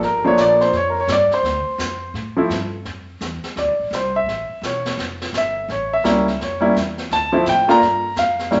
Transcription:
0.01 upright bass G1, grand piano A#4, brush sweep, snare
0.24 grand piano F3 A3 A#3 D4 C#5, muted upright bass stroke
0.36 upright bass A#1, grand piano C#5, snare, hi-hat pedal
0.41 grand piano D5
0.60 grand piano C5, snare
0.72 upright bass F2, brush sweep, snare
0.77 grand piano C#5
0.90 grand piano A#4
1.01 grand piano C#5
1.08 upright bass G2, snare, hi-hat pedal
1.12 grand piano D5
1.30 grand piano C5, muted upright bass stroke, snare
1.43 upright bass D2, brush sweep, snare
1.66 muted upright bass stroke
1.78 upright bass F2, snare, hi-hat pedal
2.14 upright bass A2, brush sweep, snare
2.37 grand piano F3 A3 C4 E4
2.50 upright bass G2, snare, hi-hat pedal
2.85 upright bass F2, brush sweep, snare
3.21 upright bass E2, snare, hi-hat pedal
3.44 muted upright bass stroke, snare
3.56 upright bass D2, grand piano D5, brush sweep, snare
3.68 upright bass C2
3.79 upright bass A1
3.91 upright bass C2, snare, hi-hat pedal
3.95 grand piano C5
4.16 grand piano E5
4.26 upright bass A1, brush sweep, snare
4.49 muted upright bass stroke
4.62 upright bass E1, snare, hi-hat pedal
4.66 grand piano C#5
4.86 snare
4.97 upright bass F1, brush sweep, snare
5.21 snare
5.33 upright bass G1, snare, hi-hat pedal
5.37 grand piano E5
5.68 upright bass A1, grand piano C#5, brush sweep, snare
5.93 grand piano E5
6.04 upright bass C#2, grand piano G3 A#3 C#4 E4, snare, hi-hat pedal
6.28 snare
6.39 upright bass F2, grand piano C#5, brush sweep, snare
6.60 grand piano G3 A#3 C#4 E4
6.75 upright bass E2, snare, hi-hat pedal
6.98 snare
7.11 upright bass D2, grand piano A5, brush sweep, snare
7.32 grand piano F3 A3 C4 E4
7.46 upright bass A2, grand piano G5, snare, hi-hat pedal
7.68 grand piano A3 A#3 D4 F4 A#5, snare
7.81 upright bass G2, brush sweep, snare
8.16 upright bass F2, grand piano F5, snare, hi-hat pedal
8.39 snare
8.51 upright bass A2, grand piano G3 A#3 C#4 E4, brush sweep, snare

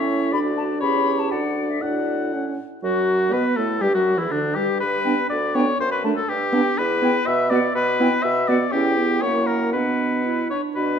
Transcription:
Already playing: bassoon A2, french horn C#4, clarinet E4, oboe C#5, flute E5
0.32 bassoon D2, french horn D4, clarinet F#4, oboe D5, flute B5
0.57 flute A5
0.81 bassoon E2, french horn C#4, clarinet G4, oboe C#5, flute B5
1.19 flute A5
1.31 bassoon D2, french horn D4, clarinet F#4, oboe D5, flute F#5
1.69 flute E5
1.81 bassoon A2, french horn D4, clarinet F#4, flute D5, oboe F#5
2.33 french horn C#4, clarinet E4
2.82 bassoon F#2, french horn F#3, flute F#4, oboe F#4, clarinet F#4
3.32 bassoon B2, french horn B3, flute B4, oboe B4, clarinet B4
3.56 bassoon A2, french horn A3, flute A4, oboe A4, clarinet A4
3.81 bassoon G2, french horn G3, oboe G4, flute G4, clarinet G4
3.94 bassoon F#2, french horn F#3, flute F#4, clarinet F#4, oboe F#4
4.17 bassoon E2, french horn E3, oboe E4, flute E4, clarinet E4
4.31 bassoon D2, french horn D3, oboe D4, flute D4, clarinet D4
4.55 bassoon G2, french horn G3, oboe G4, flute G4, clarinet G4
4.80 bassoon G2, oboe B4
5.05 french horn B3, clarinet D4, flute G5
5.30 bassoon D2, oboe D5
5.55 french horn B3, clarinet D4, oboe C#5, flute G5
5.80 bassoon F#2, oboe C5
5.92 oboe B4
6.04 french horn A3, clarinet D4, flute A5
6.16 oboe A4
6.29 bassoon G2, oboe G4
6.52 french horn B3, clarinet D4, flute G5
6.78 bassoon E2, oboe B4
7.02 french horn B3, clarinet E4, flute G5
7.27 bassoon B2, oboe E5
7.50 french horn B3, clarinet F#4, oboe D5, flute F#5
7.75 bassoon B2, oboe B4
8.00 french horn B3, clarinet E4, flute G5
8.23 bassoon B2, oboe E5
8.48 french horn B3, clarinet F#4, oboe D5, flute F#5
8.72 bassoon E2, french horn C#4, clarinet E4, oboe G4, flute G5
8.98 french horn B3
9.22 bassoon F#2, french horn A#3, clarinet E4, oboe C#5, flute F#5
9.47 oboe A#4
9.73 bassoon B2, french horn B3, clarinet D4, oboe B4, flute F#5
10.25 clarinet E4
10.50 clarinet D4, oboe C#5
10.75 bassoon B2, french horn D4, clarinet F#4, oboe B4, flute B5

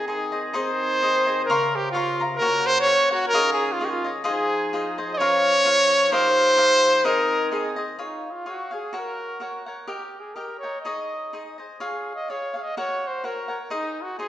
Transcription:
Already playing: woodwind section D#3 C4 G#4
0.07 cavaquinho D#4 G#4 C5 D#5, trumpet G#4
0.32 cavaquinho G#4 C5 D#5
0.53 woodwind section D#3 C4 G#4, cavaquinho D#4 G#4 C5 D#5, trumpet C5
1.02 cavaquinho D#4 G#4 C5 D#5
1.27 cavaquinho G#4 C5 D#5
1.45 woodwind section C3 C#3 A#4, trumpet A#4
1.50 cavaquinho C#5 F5 A#5 C6
1.76 trumpet G4
1.91 trumpet F4, cavaquinho C#5 F5
1.96 cavaquinho A#5 C6
2.20 cavaquinho F5 A#5 C6
2.36 woodwind section C#3, trumpet A#4
2.40 woodwind section A#3 F#4, cavaquinho F#4 A#4 C#5 F#5
2.67 trumpet C5
2.80 trumpet C#5
2.86 cavaquinho F#4 A#4 C#5 F#5
3.11 trumpet F#4, cavaquinho A#4 C#5 F#5
3.28 woodwind section F4, trumpet A#4
3.33 woodwind section D#3 C#4, cavaquinho F4 G#4 C#5 D#5
3.53 trumpet G#4
3.72 trumpet F4
3.79 cavaquinho F4 G#4 C#5 D#5
3.85 trumpet G4
3.90 trumpet F4
4.04 cavaquinho G#4 C#5 D#5
4.24 woodwind section F3 D#4 G#4, cavaquinho F4 G#4 C5 D#5, trumpet G#4
4.73 cavaquinho F4 G#4 C5 D#5
4.98 cavaquinho G#4 C5 D#5
5.13 woodwind section A#4, trumpet D#5
5.17 woodwind section C#4, cavaquinho F4 A#4 C#5, trumpet C#5
5.22 cavaquinho F5
5.65 cavaquinho F4 A#4 C#5 F5
6.08 woodwind section D#4 G4, cavaquinho G4
6.12 cavaquinho A#4 D#5 F5, trumpet C5
6.57 cavaquinho G4 A#4 D#5 F5
7.03 woodwind section D#3 C4 G#4, cavaquinho D#4 G#4 C5 D#5, trumpet A#4
7.51 cavaquinho D#4 G#4 C5 D#5, trumpet G#4
7.76 cavaquinho G#4 C5 D#5
7.99 trumpet D#4, cavaquinho F4 G#4 C#5 F5
8.32 trumpet F4
8.46 cavaquinho F4 G#4 C#5 F5
8.50 trumpet F#4
8.71 cavaquinho G#4 C#5 F5, trumpet G#4
8.93 cavaquinho F#4 A#4 C#5 F#5
8.98 trumpet A#4
9.40 cavaquinho F#4 A#4 C#5 F#5
9.66 cavaquinho A#4 C#5 F#5
9.87 cavaquinho G4 A#4 D#5 G5, trumpet G4
10.20 trumpet G#4
10.35 cavaquinho G4 A#4 D#5 G5, trumpet A#4
10.59 trumpet C#5
10.63 cavaquinho A#4 D#5 G5
10.82 cavaquinho D#4 G#4, trumpet D#5
10.86 cavaquinho C#5 D#5
11.33 cavaquinho D#4 G#4 C5 D#5
11.58 cavaquinho G#4 C5 D#5
11.80 cavaquinho F4 G#4 C#5 F5, trumpet G#4
12.15 trumpet D#5
12.28 cavaquinho F4 G#4 C#5 F5, trumpet C#5
12.54 cavaquinho G#4 C#5 F5
12.58 trumpet F5
12.63 trumpet D#5
12.77 cavaquinho F#4 A#4 C#5 F#5, trumpet C#5
13.08 trumpet C5
13.24 cavaquinho F#4 A#4 C#5 F#5, trumpet A#4
13.48 cavaquinho A#4 C#5 F#5
13.70 cavaquinho D#4 G#4 C5 D#5, trumpet D#4
14.02 trumpet F#4
14.19 cavaquinho D#4 G#4 C5 D#5, trumpet G#4

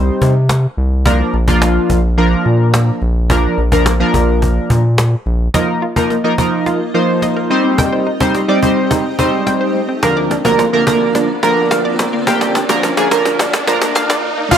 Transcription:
Already playing: analog synth bass C2, synth keys G3 C4 D#4 C5
0.22 analog synth bass C3, cajon bass
0.49 cajon slap
0.78 analog synth bass C2
1.06 synth keys F3 A#3 D4 A#4, cajon bass
1.34 analog synth bass A#1, cajon slap
1.48 synth keys F3 A#3 D4 F4, cajon bass
1.62 cajon slap
1.90 analog synth bass A#1, cajon bass
2.18 synth keys F3 A#3 D4 A#4, cajon slap
2.45 analog synth bass A#2, cajon slap
2.74 cajon slap
3.02 analog synth bass A#1, cajon slap
3.30 synth keys F3 A#3 D4 A#4, cajon bass
3.58 analog synth bass A#1, cajon slap
3.72 synth keys F3 A#3 D4 A#4, cajon bass
3.86 cajon slap
4.00 synth keys F3 A#3 D4 A#4
4.14 analog synth bass A#1, cajon bass
4.42 cajon bass, cajon slap
4.70 analog synth bass A#2, cajon bass
4.98 cajon slap
5.26 analog synth bass A#1, cajon slap
5.54 synth keys F3 A#3 D#4 A#4, ambient pad A#3 D#4 F4 D#5, synth pluck D#5, cajon bass, cajon slap, riser
5.68 synth pluck A#4
5.82 synth pluck F4
5.96 synth keys F3 A#3 D#4 A#4, synth pluck D#4, cajon bass
6.10 synth pluck A#3, cajon slap
6.24 synth keys F3 A#3 D#4 A#4
6.38 synth keys F3 A#3 D#4 A#4, cajon bass
6.66 synth pluck F4, cajon slap
6.94 synth keys F3 A#3 D#4 C5, synth pluck A#3
7.22 synth pluck D#5, cajon slap
7.37 synth pluck A#4
7.50 synth keys G3 C4 D#4 C5, ambient pad C4 G4 D#5
7.64 synth pluck C4
7.78 synth pluck G5, cajon bass, cajon slap
7.92 synth pluck C5
8.06 synth pluck D#4, cajon slap
8.20 synth keys G3 C4 D#4 C5, synth pluck C4, cajon bass
8.34 synth pluck G3, cajon slap
8.48 synth keys G3 C4 D#4 D5
8.62 synth keys G3 C4 D#4 C5, cajon bass
8.91 synth pluck D#4, cajon bass, cajon slap
9.19 synth keys G3 C4 D#4 C5, synth pluck G3, cajon bass
9.47 synth pluck G5, cajon slap
9.61 synth pluck C5
9.75 cajon slap
9.89 synth pluck C4
10.03 synth keys D2 F3 A#3 D4 A#4, ambient pad D3 A#3 D4 F4 D5, synth pluck F5, cajon bass, cajon slap
10.17 synth pluck D5
10.31 synth pluck D4, cajon slap
10.45 synth keys D2 F3 A#3 D4 A#4, synth pluck A#3, cajon bass
10.59 synth pluck F3, cajon slap
10.73 synth keys D2 F3 A#3 D4 A#4
10.87 synth keys D2 F3 A#3 D4 A#4, cajon bass, cajon slap
11.15 synth pluck D4, cajon slap
11.43 synth keys D2 F3 A#3 D4 A#4, synth pluck F3, cajon slap
11.71 synth pluck F5, cajon slap
11.85 synth pluck D5
11.99 cajon slap
12.13 synth pluck A#3
12.27 synth keys D2 F3 A#3 D4 G4, synth pluck F5, cajon bass, cajon slap
12.41 synth pluck D5, cajon slap
12.55 synth pluck D4, cajon slap
12.69 synth keys D2 F3 A#3 D4 A#4, synth pluck A#3, cajon bass, cajon slap
12.83 synth pluck F3, cajon slap
12.97 synth keys D2 F3 A#3 D4 G#4, cajon slap
13.11 synth keys D2 F3 A#3 D4 A#4, cajon bass, cajon slap
13.25 cajon slap
13.39 synth pluck D4, cajon bass, cajon slap
13.53 cajon slap
13.67 synth keys D2 F3 A#3 D4 A#4, synth pluck F3, cajon bass, cajon slap
13.82 cajon slap
13.95 synth pluck F5, cajon slap
14.09 synth pluck D5, cajon slap
14.37 synth pluck A#3
14.51 ambient pad D#3 F3 A#3 F4, synth keys A#3 D#4 F4, supersaw synth F4 F5, cajon bass, downlifter

